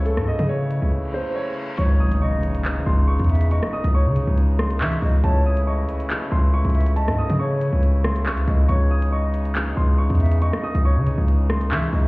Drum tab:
HH |x-----x-----x-------------------|x-----x-----x-x-x---------xxxxx-|x-----x-----x---x-----x---x-o---|x-----x-----x-x-x---------xxxxx-|
CP |--------------------------------|----------------x---------------|------------------------x-------|----------------x---------------|
SD |--r-----------------------------|--------------------------------|--r-----------------r-----------|--------------------------------|

HH |x-----x-----x---x-----x---x-x---|x-----x-----x-x-x---------xxxxx-|x-----x-----x---x-----x---x-o---|
CP |------------------------x-------|----------------x---------------|------------------------x-------|
SD |--r-----------------r-----------|--------------------------------|--r-----------------r-----------|